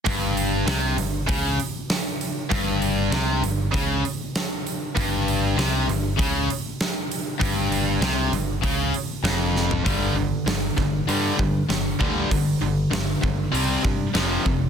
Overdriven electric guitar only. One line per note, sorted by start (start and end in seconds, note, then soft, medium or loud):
0.06 0.66 G2 loud
0.66 0.96 C3 loud
0.98 1.22 G2 medium
1.27 1.57 C#3 loud
2.50 3.11 G2 loud
3.11 3.41 C3 loud
3.43 3.67 G2 medium
3.73 4.03 C#3 loud
4.96 5.56 G2 medium
5.56 5.86 C3 loud
5.87 6.12 G2 medium
6.17 6.47 C#3 loud
7.39 8.00 G2 loud
8.01 8.31 C3 loud
8.32 8.56 G2 medium
8.62 8.92 C#3 loud
9.24 9.84 F2 loud
9.85 10.14 G2 medium
9.85 10.14 D3 medium
9.85 10.14 G3 medium
10.15 10.43 G2 medium
10.15 10.43 D3 medium
10.46 10.74 G2 medium
10.46 10.74 D3 medium
10.76 11.04 G2 medium
10.76 11.04 D3 medium
11.07 11.36 G2 medium
11.07 11.36 D3 medium
11.07 11.37 G3 loud
11.37 11.65 G2 medium
11.37 11.66 D3 medium
11.69 11.96 G2 medium
11.69 11.97 D3 medium
11.99 12.28 G2 medium
11.99 12.29 D3 medium
11.99 12.29 G3 loud
12.30 12.58 G2 medium
12.30 12.58 D3 medium
12.61 12.88 G2 medium
12.61 12.89 D3 medium
12.90 13.19 G2 medium
12.90 13.19 D3 medium
13.21 13.49 G2 medium
13.21 13.49 D3 medium
13.52 13.81 C3 loud
13.52 13.81 G3 loud
13.52 13.81 C4 loud
13.83 14.11 C3 medium
13.83 14.11 G3 medium
14.14 14.43 F2 medium
14.14 14.43 C3 medium
14.14 14.43 F3 loud
14.45 14.70 F2 medium
14.45 14.70 C3 medium